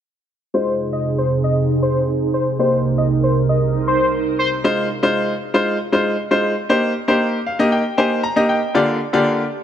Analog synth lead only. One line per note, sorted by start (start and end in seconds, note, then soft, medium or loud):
0.54 0.72 C5 loud
0.93 1.02 D#5 medium
1.18 1.27 C5 medium
1.44 1.53 D#5 medium
1.82 2.00 C5 medium
2.34 2.43 C5 medium
2.59 2.77 C5 loud
2.98 3.07 D#5 medium
3.23 3.33 C5 medium
3.49 3.58 D#5 medium
3.88 4.06 C5 medium
4.39 4.48 C5 medium